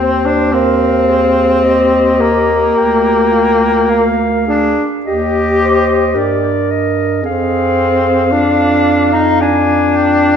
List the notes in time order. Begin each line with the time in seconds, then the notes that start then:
Already playing: D#2 C4 C5 G5
0.26 D4
0.53 C4 A#4 F5
1.08 G#4
1.64 G4 D#5
2.21 A#3
2.75 D2 G4 G5
3.31 F4
3.87 A#4 F5
4.47 D4 G#4
5.06 D#2 G4 D#5
5.62 C5
6.15 G2 A#4 D5
6.70 D#5
7.23 F2 C4 G#4 F5
8.31 D4 F4
9.13 D#4
9.41 D4 G#5
9.96 G5